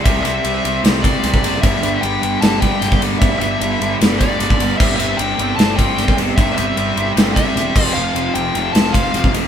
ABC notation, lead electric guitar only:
X:1
M:4/4
L:1/8
Q:1/4=152
K:C
V:1 name="Lead electric guitar"
e e3 z d3 | e2 g2 a g2 z | e e3 z d3 | e e g2 a g2 z |
e e3 z e3 | f2 g2 a f2 z |]